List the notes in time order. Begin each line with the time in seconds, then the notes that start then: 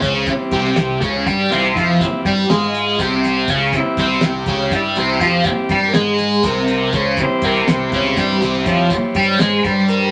0.01 C#2 C#3 C#4, kick, closed hi-hat
0.26 E3 G3 C4, kick, closed hi-hat
0.51 C2 C3 C4 G4, kick, closed hi-hat
0.76 C2 C3, snare, closed hi-hat
1.01 C#2 C#3 C#4 G#4, kick, closed hi-hat
1.26 G2 G3 G4, kick, closed hi-hat
1.50 C2 C3 E3 G3 C4 F4, snare, closed hi-hat
1.74 F2 F3 E4 F4, kick, snare, closed hi-hat
2.00 E3 G3 C4, muted fingered electric bass stroke, muted distorted electric guitar stroke, kick, closed hi-hat
2.25 G2 G3 G4, kick, closed hi-hat
2.49 G#2 G#3 F4 G#4, snare, closed hi-hat
2.75 closed hi-hat
2.99 C2 C3 C4 G4, kick, closed hi-hat
3.24 snare, closed hi-hat
3.48 C#2 C#3 C#4 F4, kick, closed hi-hat
3.73 E3 G3 C4, kick, closed hi-hat
3.77 E4
3.97 C2 C3 C4, kick, snare, closed hi-hat
4.21 C2 C3, snare, closed hi-hat
4.26 G4
4.46 C#2 C#3 C#4, kick, snare, closed hi-hat
4.71 G2 G3 G4, kick, snare, closed hi-hat
4.75 E4
4.96 C2 C3 E3 G3 C4, snare, closed hi-hat
5.20 F2 F3 F4 G4, kick, snare, closed hi-hat
5.43 E3 G3 C4, muted fingered electric bass stroke, muted distorted electric guitar stroke, kick, closed hi-hat
5.69 G2 G3 G4, kick, closed hi-hat
5.88 A#4
5.94 G#2 G#3 G#4, snare, closed hi-hat
6.18 snare, closed hi-hat
6.43 C2 C3 C4 A#4, kick, closed hi-hat
6.68 closed hi-hat
6.93 C#2 C#3 C#4, kick, closed hi-hat
6.97 C5
7.17 E3 G3, kick, closed hi-hat
7.21 C4 C5
7.42 C2 C3 C4 A#4, kick, closed hi-hat
7.66 C2 C3 C5, snare, closed hi-hat
7.92 C#2 C#3 C#4, kick, closed hi-hat
8.16 G2 G3 G4, kick, snare, closed hi-hat
8.41 C2 C3 C4, snare, closed hi-hat
8.65 F2 F3 F4 C#5, kick, snare, closed hi-hat
8.90 E3 G3 C5, muted fingered electric bass stroke, muted distorted electric guitar stroke, kick, closed hi-hat
9.15 G2 G3 G4, kick, closed hi-hat
9.39 G#2 G#3 G#4 C5, snare, closed hi-hat
9.64 G2 G3 G4, kick, closed hi-hat
9.88 A#4, closed hi-hat